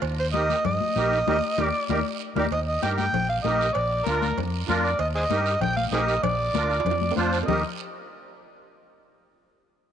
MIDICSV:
0, 0, Header, 1, 5, 480
1, 0, Start_track
1, 0, Key_signature, -3, "major"
1, 0, Tempo, 310398
1, 43, Time_signature, 4, 2, 24, 8
1, 15346, End_track
2, 0, Start_track
2, 0, Title_t, "Harmonica"
2, 0, Program_c, 0, 22
2, 302, Note_on_c, 0, 72, 86
2, 406, Note_off_c, 0, 72, 0
2, 525, Note_on_c, 0, 75, 110
2, 972, Note_off_c, 0, 75, 0
2, 1015, Note_on_c, 0, 75, 101
2, 2530, Note_off_c, 0, 75, 0
2, 2530, Note_on_c, 0, 74, 101
2, 3352, Note_off_c, 0, 74, 0
2, 3682, Note_on_c, 0, 74, 87
2, 3783, Note_off_c, 0, 74, 0
2, 3914, Note_on_c, 0, 75, 93
2, 4016, Note_off_c, 0, 75, 0
2, 4147, Note_on_c, 0, 75, 82
2, 4362, Note_off_c, 0, 75, 0
2, 4372, Note_on_c, 0, 79, 99
2, 4480, Note_off_c, 0, 79, 0
2, 4626, Note_on_c, 0, 79, 107
2, 5065, Note_off_c, 0, 79, 0
2, 5098, Note_on_c, 0, 77, 91
2, 5205, Note_off_c, 0, 77, 0
2, 5309, Note_on_c, 0, 75, 94
2, 5766, Note_off_c, 0, 75, 0
2, 5775, Note_on_c, 0, 74, 91
2, 6274, Note_on_c, 0, 70, 76
2, 6297, Note_off_c, 0, 74, 0
2, 6762, Note_off_c, 0, 70, 0
2, 7488, Note_on_c, 0, 74, 82
2, 7712, Note_off_c, 0, 74, 0
2, 7727, Note_on_c, 0, 75, 95
2, 7836, Note_off_c, 0, 75, 0
2, 7969, Note_on_c, 0, 68, 63
2, 7969, Note_on_c, 0, 72, 63
2, 7969, Note_on_c, 0, 75, 90
2, 8099, Note_off_c, 0, 68, 0
2, 8105, Note_off_c, 0, 72, 0
2, 8638, Note_off_c, 0, 75, 0
2, 8685, Note_on_c, 0, 79, 110
2, 8910, Note_off_c, 0, 79, 0
2, 8921, Note_on_c, 0, 77, 96
2, 9031, Note_off_c, 0, 77, 0
2, 9170, Note_on_c, 0, 68, 68
2, 9170, Note_on_c, 0, 72, 68
2, 9170, Note_on_c, 0, 75, 97
2, 9271, Note_off_c, 0, 72, 0
2, 9282, Note_off_c, 0, 68, 0
2, 9615, Note_off_c, 0, 75, 0
2, 9636, Note_on_c, 0, 74, 96
2, 11019, Note_off_c, 0, 74, 0
2, 11552, Note_on_c, 0, 75, 84
2, 11781, Note_off_c, 0, 75, 0
2, 15346, End_track
3, 0, Start_track
3, 0, Title_t, "Accordion"
3, 0, Program_c, 1, 21
3, 522, Note_on_c, 1, 63, 69
3, 526, Note_on_c, 1, 67, 63
3, 535, Note_on_c, 1, 70, 76
3, 860, Note_off_c, 1, 63, 0
3, 862, Note_off_c, 1, 67, 0
3, 867, Note_off_c, 1, 70, 0
3, 1484, Note_on_c, 1, 63, 74
3, 1491, Note_on_c, 1, 67, 72
3, 1498, Note_on_c, 1, 70, 86
3, 1822, Note_off_c, 1, 63, 0
3, 1826, Note_off_c, 1, 67, 0
3, 1829, Note_off_c, 1, 70, 0
3, 1965, Note_on_c, 1, 63, 95
3, 1968, Note_on_c, 1, 67, 101
3, 1970, Note_on_c, 1, 70, 92
3, 2120, Note_off_c, 1, 63, 0
3, 2122, Note_off_c, 1, 67, 0
3, 2123, Note_off_c, 1, 70, 0
3, 2457, Note_on_c, 1, 63, 91
3, 2458, Note_on_c, 1, 70, 91
3, 2462, Note_on_c, 1, 67, 87
3, 2607, Note_off_c, 1, 63, 0
3, 2608, Note_off_c, 1, 70, 0
3, 2611, Note_off_c, 1, 67, 0
3, 2939, Note_on_c, 1, 67, 95
3, 2939, Note_on_c, 1, 70, 97
3, 2943, Note_on_c, 1, 63, 98
3, 3088, Note_off_c, 1, 70, 0
3, 3089, Note_off_c, 1, 67, 0
3, 3091, Note_off_c, 1, 63, 0
3, 3652, Note_on_c, 1, 70, 97
3, 3653, Note_on_c, 1, 67, 99
3, 3660, Note_on_c, 1, 63, 95
3, 3804, Note_off_c, 1, 70, 0
3, 3806, Note_off_c, 1, 67, 0
3, 3810, Note_off_c, 1, 63, 0
3, 4372, Note_on_c, 1, 63, 64
3, 4377, Note_on_c, 1, 67, 63
3, 4384, Note_on_c, 1, 70, 73
3, 4708, Note_off_c, 1, 63, 0
3, 4710, Note_off_c, 1, 67, 0
3, 4713, Note_off_c, 1, 70, 0
3, 5327, Note_on_c, 1, 63, 76
3, 5337, Note_on_c, 1, 67, 67
3, 5347, Note_on_c, 1, 70, 80
3, 5665, Note_off_c, 1, 63, 0
3, 5670, Note_off_c, 1, 67, 0
3, 5675, Note_off_c, 1, 70, 0
3, 6290, Note_on_c, 1, 62, 70
3, 6295, Note_on_c, 1, 65, 62
3, 6300, Note_on_c, 1, 70, 80
3, 6626, Note_off_c, 1, 62, 0
3, 6629, Note_off_c, 1, 65, 0
3, 6631, Note_off_c, 1, 70, 0
3, 7230, Note_on_c, 1, 62, 91
3, 7236, Note_on_c, 1, 65, 86
3, 7248, Note_on_c, 1, 70, 102
3, 7576, Note_off_c, 1, 62, 0
3, 7579, Note_off_c, 1, 65, 0
3, 7585, Note_off_c, 1, 70, 0
3, 8202, Note_on_c, 1, 63, 70
3, 8213, Note_on_c, 1, 67, 65
3, 8220, Note_on_c, 1, 70, 82
3, 8541, Note_off_c, 1, 63, 0
3, 8547, Note_off_c, 1, 67, 0
3, 8550, Note_off_c, 1, 70, 0
3, 9159, Note_on_c, 1, 63, 77
3, 9164, Note_on_c, 1, 67, 69
3, 9171, Note_on_c, 1, 70, 86
3, 9499, Note_off_c, 1, 63, 0
3, 9501, Note_off_c, 1, 67, 0
3, 9505, Note_off_c, 1, 70, 0
3, 10120, Note_on_c, 1, 62, 74
3, 10126, Note_on_c, 1, 65, 64
3, 10130, Note_on_c, 1, 70, 76
3, 10459, Note_off_c, 1, 62, 0
3, 10462, Note_off_c, 1, 65, 0
3, 10464, Note_off_c, 1, 70, 0
3, 11070, Note_on_c, 1, 62, 98
3, 11075, Note_on_c, 1, 65, 80
3, 11086, Note_on_c, 1, 72, 101
3, 11414, Note_off_c, 1, 62, 0
3, 11416, Note_off_c, 1, 65, 0
3, 11422, Note_off_c, 1, 72, 0
3, 11560, Note_on_c, 1, 67, 74
3, 11564, Note_on_c, 1, 70, 90
3, 11568, Note_on_c, 1, 63, 77
3, 11786, Note_off_c, 1, 67, 0
3, 11788, Note_off_c, 1, 70, 0
3, 11790, Note_off_c, 1, 63, 0
3, 15346, End_track
4, 0, Start_track
4, 0, Title_t, "Fingered electric bass"
4, 0, Program_c, 2, 33
4, 32, Note_on_c, 2, 39, 110
4, 806, Note_off_c, 2, 39, 0
4, 1006, Note_on_c, 2, 43, 92
4, 1199, Note_off_c, 2, 43, 0
4, 1483, Note_on_c, 2, 34, 105
4, 1869, Note_off_c, 2, 34, 0
4, 1976, Note_on_c, 2, 39, 94
4, 2151, Note_off_c, 2, 39, 0
4, 2445, Note_on_c, 2, 39, 94
4, 2625, Note_off_c, 2, 39, 0
4, 2930, Note_on_c, 2, 39, 89
4, 3108, Note_off_c, 2, 39, 0
4, 3643, Note_on_c, 2, 39, 97
4, 3825, Note_off_c, 2, 39, 0
4, 3881, Note_on_c, 2, 39, 92
4, 4269, Note_off_c, 2, 39, 0
4, 4368, Note_on_c, 2, 43, 83
4, 4753, Note_off_c, 2, 43, 0
4, 4837, Note_on_c, 2, 34, 93
4, 5227, Note_off_c, 2, 34, 0
4, 5329, Note_on_c, 2, 34, 88
4, 5713, Note_off_c, 2, 34, 0
4, 5809, Note_on_c, 2, 34, 97
4, 6194, Note_off_c, 2, 34, 0
4, 6288, Note_on_c, 2, 38, 87
4, 6673, Note_off_c, 2, 38, 0
4, 6761, Note_on_c, 2, 41, 86
4, 7149, Note_off_c, 2, 41, 0
4, 7242, Note_on_c, 2, 41, 92
4, 7629, Note_off_c, 2, 41, 0
4, 7717, Note_on_c, 2, 39, 96
4, 8106, Note_off_c, 2, 39, 0
4, 8189, Note_on_c, 2, 43, 92
4, 8581, Note_off_c, 2, 43, 0
4, 8667, Note_on_c, 2, 34, 93
4, 9060, Note_off_c, 2, 34, 0
4, 9140, Note_on_c, 2, 34, 93
4, 9535, Note_off_c, 2, 34, 0
4, 9640, Note_on_c, 2, 34, 92
4, 10027, Note_off_c, 2, 34, 0
4, 10109, Note_on_c, 2, 38, 93
4, 10500, Note_off_c, 2, 38, 0
4, 10588, Note_on_c, 2, 41, 98
4, 10979, Note_off_c, 2, 41, 0
4, 11079, Note_on_c, 2, 41, 87
4, 11465, Note_off_c, 2, 41, 0
4, 11562, Note_on_c, 2, 39, 96
4, 11787, Note_off_c, 2, 39, 0
4, 15346, End_track
5, 0, Start_track
5, 0, Title_t, "Drums"
5, 29, Note_on_c, 9, 56, 99
5, 42, Note_on_c, 9, 74, 67
5, 44, Note_on_c, 9, 63, 35
5, 184, Note_off_c, 9, 56, 0
5, 197, Note_off_c, 9, 74, 0
5, 198, Note_off_c, 9, 63, 0
5, 522, Note_on_c, 9, 73, 72
5, 523, Note_on_c, 9, 63, 90
5, 676, Note_off_c, 9, 73, 0
5, 678, Note_off_c, 9, 63, 0
5, 768, Note_on_c, 9, 63, 68
5, 777, Note_on_c, 9, 73, 74
5, 923, Note_off_c, 9, 63, 0
5, 932, Note_off_c, 9, 73, 0
5, 1000, Note_on_c, 9, 56, 83
5, 1003, Note_on_c, 9, 63, 34
5, 1003, Note_on_c, 9, 64, 82
5, 1022, Note_on_c, 9, 74, 73
5, 1155, Note_off_c, 9, 56, 0
5, 1158, Note_off_c, 9, 63, 0
5, 1158, Note_off_c, 9, 64, 0
5, 1177, Note_off_c, 9, 74, 0
5, 1244, Note_on_c, 9, 63, 74
5, 1398, Note_off_c, 9, 63, 0
5, 1486, Note_on_c, 9, 63, 79
5, 1504, Note_on_c, 9, 73, 74
5, 1640, Note_off_c, 9, 63, 0
5, 1659, Note_off_c, 9, 73, 0
5, 1751, Note_on_c, 9, 73, 68
5, 1905, Note_off_c, 9, 73, 0
5, 1972, Note_on_c, 9, 63, 100
5, 1974, Note_on_c, 9, 65, 97
5, 1976, Note_on_c, 9, 74, 93
5, 2127, Note_off_c, 9, 63, 0
5, 2128, Note_off_c, 9, 65, 0
5, 2131, Note_off_c, 9, 74, 0
5, 2447, Note_on_c, 9, 63, 101
5, 2449, Note_on_c, 9, 65, 101
5, 2464, Note_on_c, 9, 74, 97
5, 2602, Note_off_c, 9, 63, 0
5, 2603, Note_off_c, 9, 65, 0
5, 2619, Note_off_c, 9, 74, 0
5, 2928, Note_on_c, 9, 63, 94
5, 2938, Note_on_c, 9, 65, 99
5, 2946, Note_on_c, 9, 74, 97
5, 3083, Note_off_c, 9, 63, 0
5, 3093, Note_off_c, 9, 65, 0
5, 3100, Note_off_c, 9, 74, 0
5, 3653, Note_on_c, 9, 63, 100
5, 3657, Note_on_c, 9, 65, 96
5, 3673, Note_on_c, 9, 74, 95
5, 3807, Note_off_c, 9, 63, 0
5, 3812, Note_off_c, 9, 65, 0
5, 3827, Note_off_c, 9, 74, 0
5, 3898, Note_on_c, 9, 56, 95
5, 3903, Note_on_c, 9, 74, 68
5, 4052, Note_off_c, 9, 56, 0
5, 4058, Note_off_c, 9, 74, 0
5, 4375, Note_on_c, 9, 63, 96
5, 4381, Note_on_c, 9, 73, 68
5, 4530, Note_off_c, 9, 63, 0
5, 4536, Note_off_c, 9, 73, 0
5, 4604, Note_on_c, 9, 73, 73
5, 4616, Note_on_c, 9, 63, 64
5, 4759, Note_off_c, 9, 73, 0
5, 4770, Note_off_c, 9, 63, 0
5, 4854, Note_on_c, 9, 56, 85
5, 4855, Note_on_c, 9, 74, 68
5, 4857, Note_on_c, 9, 63, 34
5, 4857, Note_on_c, 9, 64, 81
5, 5009, Note_off_c, 9, 56, 0
5, 5010, Note_off_c, 9, 74, 0
5, 5012, Note_off_c, 9, 63, 0
5, 5012, Note_off_c, 9, 64, 0
5, 5324, Note_on_c, 9, 66, 71
5, 5329, Note_on_c, 9, 63, 79
5, 5342, Note_on_c, 9, 73, 70
5, 5479, Note_off_c, 9, 66, 0
5, 5484, Note_off_c, 9, 63, 0
5, 5496, Note_off_c, 9, 73, 0
5, 5585, Note_on_c, 9, 73, 69
5, 5740, Note_off_c, 9, 73, 0
5, 5798, Note_on_c, 9, 56, 95
5, 5806, Note_on_c, 9, 63, 33
5, 5822, Note_on_c, 9, 74, 66
5, 5953, Note_off_c, 9, 56, 0
5, 5961, Note_off_c, 9, 63, 0
5, 5976, Note_off_c, 9, 74, 0
5, 6286, Note_on_c, 9, 63, 95
5, 6287, Note_on_c, 9, 73, 72
5, 6440, Note_off_c, 9, 63, 0
5, 6441, Note_off_c, 9, 73, 0
5, 6527, Note_on_c, 9, 63, 66
5, 6534, Note_on_c, 9, 73, 74
5, 6682, Note_off_c, 9, 63, 0
5, 6688, Note_off_c, 9, 73, 0
5, 6768, Note_on_c, 9, 56, 82
5, 6777, Note_on_c, 9, 63, 33
5, 6777, Note_on_c, 9, 64, 75
5, 6779, Note_on_c, 9, 74, 68
5, 6922, Note_off_c, 9, 56, 0
5, 6932, Note_off_c, 9, 63, 0
5, 6932, Note_off_c, 9, 64, 0
5, 6934, Note_off_c, 9, 74, 0
5, 7235, Note_on_c, 9, 66, 73
5, 7257, Note_on_c, 9, 63, 81
5, 7262, Note_on_c, 9, 73, 67
5, 7390, Note_off_c, 9, 66, 0
5, 7412, Note_off_c, 9, 63, 0
5, 7417, Note_off_c, 9, 73, 0
5, 7502, Note_on_c, 9, 73, 69
5, 7657, Note_off_c, 9, 73, 0
5, 7717, Note_on_c, 9, 56, 97
5, 7726, Note_on_c, 9, 74, 67
5, 7735, Note_on_c, 9, 63, 33
5, 7872, Note_off_c, 9, 56, 0
5, 7881, Note_off_c, 9, 74, 0
5, 7890, Note_off_c, 9, 63, 0
5, 8202, Note_on_c, 9, 63, 94
5, 8208, Note_on_c, 9, 73, 69
5, 8357, Note_off_c, 9, 63, 0
5, 8362, Note_off_c, 9, 73, 0
5, 8440, Note_on_c, 9, 73, 78
5, 8594, Note_off_c, 9, 73, 0
5, 8681, Note_on_c, 9, 56, 88
5, 8682, Note_on_c, 9, 74, 68
5, 8686, Note_on_c, 9, 63, 35
5, 8686, Note_on_c, 9, 64, 80
5, 8836, Note_off_c, 9, 56, 0
5, 8837, Note_off_c, 9, 74, 0
5, 8841, Note_off_c, 9, 63, 0
5, 8841, Note_off_c, 9, 64, 0
5, 8923, Note_on_c, 9, 63, 71
5, 9078, Note_off_c, 9, 63, 0
5, 9161, Note_on_c, 9, 63, 78
5, 9161, Note_on_c, 9, 73, 68
5, 9165, Note_on_c, 9, 66, 72
5, 9316, Note_off_c, 9, 63, 0
5, 9316, Note_off_c, 9, 73, 0
5, 9320, Note_off_c, 9, 66, 0
5, 9408, Note_on_c, 9, 73, 71
5, 9563, Note_off_c, 9, 73, 0
5, 9641, Note_on_c, 9, 63, 34
5, 9641, Note_on_c, 9, 64, 73
5, 9643, Note_on_c, 9, 56, 105
5, 9655, Note_on_c, 9, 74, 72
5, 9795, Note_off_c, 9, 63, 0
5, 9795, Note_off_c, 9, 64, 0
5, 9797, Note_off_c, 9, 56, 0
5, 9810, Note_off_c, 9, 74, 0
5, 10125, Note_on_c, 9, 63, 96
5, 10128, Note_on_c, 9, 73, 78
5, 10280, Note_off_c, 9, 63, 0
5, 10282, Note_off_c, 9, 73, 0
5, 10363, Note_on_c, 9, 65, 75
5, 10378, Note_on_c, 9, 73, 75
5, 10516, Note_off_c, 9, 65, 0
5, 10516, Note_on_c, 9, 65, 112
5, 10533, Note_off_c, 9, 73, 0
5, 10606, Note_on_c, 9, 56, 85
5, 10614, Note_on_c, 9, 63, 35
5, 10614, Note_on_c, 9, 64, 85
5, 10624, Note_on_c, 9, 74, 68
5, 10670, Note_off_c, 9, 65, 0
5, 10690, Note_on_c, 9, 65, 82
5, 10761, Note_off_c, 9, 56, 0
5, 10768, Note_off_c, 9, 63, 0
5, 10768, Note_off_c, 9, 64, 0
5, 10779, Note_off_c, 9, 74, 0
5, 10844, Note_off_c, 9, 65, 0
5, 10848, Note_on_c, 9, 63, 69
5, 10998, Note_on_c, 9, 66, 101
5, 11002, Note_off_c, 9, 63, 0
5, 11086, Note_on_c, 9, 63, 82
5, 11099, Note_on_c, 9, 73, 71
5, 11153, Note_off_c, 9, 66, 0
5, 11240, Note_off_c, 9, 63, 0
5, 11253, Note_off_c, 9, 73, 0
5, 11332, Note_on_c, 9, 73, 74
5, 11487, Note_off_c, 9, 73, 0
5, 11491, Note_on_c, 9, 66, 86
5, 11572, Note_off_c, 9, 66, 0
5, 11572, Note_on_c, 9, 66, 93
5, 11574, Note_on_c, 9, 74, 103
5, 11575, Note_on_c, 9, 64, 105
5, 11727, Note_off_c, 9, 66, 0
5, 11729, Note_off_c, 9, 74, 0
5, 11730, Note_off_c, 9, 64, 0
5, 15346, End_track
0, 0, End_of_file